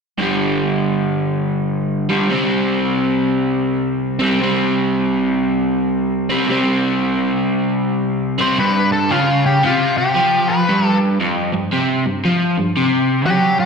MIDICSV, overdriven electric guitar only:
0, 0, Header, 1, 2, 480
1, 0, Start_track
1, 0, Tempo, 524934
1, 179, Time_signature, 4, 2, 24, 8
1, 7379, Tempo, 520382
1, 12531, End_track
2, 0, Start_track
2, 0, Title_t, "Overdriven electric guitar"
2, 0, Program_c, 0, 29
2, 167, Note_on_c, 0, 43, 71
2, 184, Note_on_c, 0, 50, 71
2, 198, Note_on_c, 0, 55, 87
2, 1898, Note_off_c, 0, 43, 0
2, 1907, Note_off_c, 0, 50, 0
2, 1913, Note_off_c, 0, 55, 0
2, 1917, Note_on_c, 0, 55, 65
2, 1926, Note_on_c, 0, 50, 71
2, 1943, Note_on_c, 0, 43, 58
2, 2092, Note_off_c, 0, 50, 0
2, 2098, Note_on_c, 0, 48, 77
2, 2100, Note_off_c, 0, 43, 0
2, 2111, Note_off_c, 0, 55, 0
2, 2114, Note_on_c, 0, 55, 77
2, 2127, Note_on_c, 0, 60, 90
2, 3829, Note_off_c, 0, 60, 0
2, 3833, Note_on_c, 0, 60, 78
2, 3846, Note_off_c, 0, 55, 0
2, 3850, Note_on_c, 0, 55, 66
2, 3858, Note_off_c, 0, 48, 0
2, 3862, Note_on_c, 0, 48, 64
2, 4020, Note_off_c, 0, 48, 0
2, 4024, Note_on_c, 0, 48, 72
2, 4040, Note_off_c, 0, 55, 0
2, 4043, Note_on_c, 0, 55, 74
2, 4049, Note_off_c, 0, 60, 0
2, 4053, Note_on_c, 0, 60, 75
2, 5746, Note_off_c, 0, 48, 0
2, 5746, Note_off_c, 0, 60, 0
2, 5757, Note_on_c, 0, 60, 72
2, 5768, Note_off_c, 0, 55, 0
2, 5772, Note_on_c, 0, 55, 68
2, 5783, Note_on_c, 0, 48, 59
2, 5908, Note_off_c, 0, 48, 0
2, 5919, Note_on_c, 0, 48, 82
2, 5928, Note_off_c, 0, 60, 0
2, 5937, Note_off_c, 0, 55, 0
2, 5941, Note_on_c, 0, 55, 72
2, 5952, Note_on_c, 0, 60, 89
2, 7653, Note_off_c, 0, 48, 0
2, 7661, Note_off_c, 0, 60, 0
2, 7664, Note_off_c, 0, 55, 0
2, 7672, Note_on_c, 0, 60, 75
2, 7686, Note_on_c, 0, 55, 61
2, 7699, Note_on_c, 0, 48, 64
2, 7845, Note_off_c, 0, 60, 0
2, 7852, Note_off_c, 0, 55, 0
2, 7856, Note_on_c, 0, 43, 89
2, 7859, Note_off_c, 0, 48, 0
2, 8332, Note_on_c, 0, 49, 100
2, 8335, Note_off_c, 0, 43, 0
2, 8814, Note_off_c, 0, 49, 0
2, 8826, Note_on_c, 0, 48, 99
2, 9301, Note_off_c, 0, 48, 0
2, 9305, Note_on_c, 0, 53, 94
2, 9780, Note_off_c, 0, 53, 0
2, 9790, Note_on_c, 0, 43, 81
2, 10263, Note_off_c, 0, 43, 0
2, 10269, Note_on_c, 0, 41, 98
2, 10560, Note_off_c, 0, 41, 0
2, 10580, Note_on_c, 0, 43, 62
2, 10716, Note_off_c, 0, 43, 0
2, 10756, Note_on_c, 0, 48, 91
2, 11043, Note_off_c, 0, 48, 0
2, 11058, Note_on_c, 0, 43, 64
2, 11195, Note_off_c, 0, 43, 0
2, 11234, Note_on_c, 0, 53, 86
2, 11522, Note_off_c, 0, 53, 0
2, 11536, Note_on_c, 0, 43, 67
2, 11673, Note_off_c, 0, 43, 0
2, 11712, Note_on_c, 0, 48, 90
2, 12186, Note_off_c, 0, 48, 0
2, 12186, Note_on_c, 0, 54, 92
2, 12531, Note_off_c, 0, 54, 0
2, 12531, End_track
0, 0, End_of_file